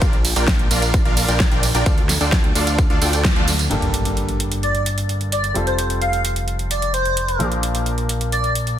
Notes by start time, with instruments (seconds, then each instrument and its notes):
0.02 analog synth bass A#1, supersaw synth D4 D5, kick, closed hi-hat, tambourine
0.13 closed hi-hat
0.25 open hi-hat, ride, tambourine
0.36 analog synth bass A#1, supersaw synth D4 F4 A#4 D5 G5, closed hi-hat, tambourine
0.48 kick, snare, closed hi-hat, tambourine
0.59 closed hi-hat
0.71 analog synth bass A#1, supersaw synth D4 F4 A#4 D5 F5, open hi-hat, ride, tambourine
0.82 closed hi-hat, tambourine
0.94 kick, closed hi-hat, tambourine
1.05 analog synth bass A#1, supersaw synth D4 F4 A#4 D5 F5, closed hi-hat
1.17 open hi-hat, ride, tambourine
1.28 analog synth bass A#1, supersaw synth D4 F4 A#4 D5 G5, closed hi-hat, tambourine
1.40 kick, snare, closed hi-hat, tambourine
1.52 analog synth bass A#1, supersaw synth D4 F4 A#4 D5 G5, closed hi-hat
1.63 open hi-hat, ride, tambourine
1.75 analog synth bass A#1, supersaw synth D4 F4 A#4 D5 G5, closed hi-hat, tambourine
1.86 analog synth bass D2, supersaw synth A4, kick, closed hi-hat, tambourine
1.98 closed hi-hat
2.09 snare, open hi-hat, ride, tambourine
2.21 analog synth bass D2, supersaw synth D4 F4 A4 D5 G5, closed hi-hat, tambourine
2.32 kick, snare, closed hi-hat, tambourine
2.44 closed hi-hat
2.55 analog synth bass D2, supersaw synth D4 F4 A4 D5 F5, open hi-hat, ride, tambourine
2.67 closed hi-hat, tambourine
2.79 kick, closed hi-hat, tambourine
2.90 analog synth bass D2, supersaw synth D4 F4 A4 D5 F5, closed hi-hat
3.02 analog synth bass D2, supersaw synth D4 F4 A4 D5 G5, open hi-hat, ride, tambourine
3.13 closed hi-hat, tambourine
3.25 kick, snare, closed hi-hat
3.36 analog synth bass D2, supersaw synth D4 F4 A4 D5 F5, closed hi-hat
3.48 open hi-hat, ride, tambourine
3.59 closed hi-hat, tambourine
3.70 analog synth bass G1, grand piano G2 G3 A#3 D4 A4, closed hi-hat, impact
3.82 closed hi-hat
3.94 closed hi-hat
4.05 closed hi-hat
4.17 closed hi-hat
4.29 closed hi-hat
4.40 closed hi-hat
4.52 closed hi-hat
4.63 digital synth lead D5, closed hi-hat
4.75 closed hi-hat
4.86 closed hi-hat
4.98 closed hi-hat
5.09 closed hi-hat
5.21 closed hi-hat
5.32 digital synth lead D5, closed hi-hat
5.44 closed hi-hat
5.54 analog synth bass F1, grand piano G3 C4 F4 A4, closed hi-hat
5.67 digital synth lead C5, closed hi-hat
5.78 digital synth lead C5, closed hi-hat
5.90 closed hi-hat
6.01 digital synth lead F5, closed hi-hat
6.13 closed hi-hat
6.25 closed hi-hat
6.36 closed hi-hat
6.48 closed hi-hat
6.59 closed hi-hat
6.71 digital synth lead D5, closed hi-hat
6.82 closed hi-hat
6.94 digital synth lead C5, closed hi-hat
7.05 closed hi-hat
7.17 closed hi-hat
7.28 closed hi-hat
7.39 analog synth bass A#1, grand piano A#2 F3 A#3 D4 A#4, closed hi-hat
7.52 closed hi-hat
7.63 closed hi-hat
7.75 closed hi-hat
7.86 closed hi-hat
7.98 closed hi-hat
8.09 closed hi-hat
8.21 closed hi-hat
8.32 digital synth lead D5, closed hi-hat
8.44 closed hi-hat
8.55 closed hi-hat
8.67 closed hi-hat